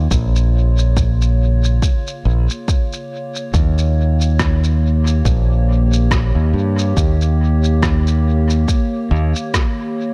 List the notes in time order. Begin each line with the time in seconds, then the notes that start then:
Already playing: C#3 A#3 F4 C#5
0.11 A#1, kick, shaker
0.36 shaker
0.78 shaker
0.97 kick, shaker
1.22 shaker
1.64 shaker
1.82 kick, shaker
2.07 shaker
2.25 A#1
2.50 shaker
2.68 kick, shaker
2.93 shaker
3.36 shaker
3.54 D#2 D#3, kick, shaker
3.78 shaker
4.21 shaker
4.39 kick, cross-stick, shaker
4.44 G4
4.64 shaker
5.07 shaker
5.25 A#1, kick, shaker
5.93 shaker
6.11 kick, cross-stick, shaker
6.35 D#2
6.53 G2
6.79 shaker
6.97 D#2, kick, shaker
7.21 shaker
7.64 shaker
7.83 kick, cross-stick, shaker
8.07 shaker
8.50 shaker
8.68 kick, shaker
9.11 D#2
9.36 shaker
9.54 kick, cross-stick, shaker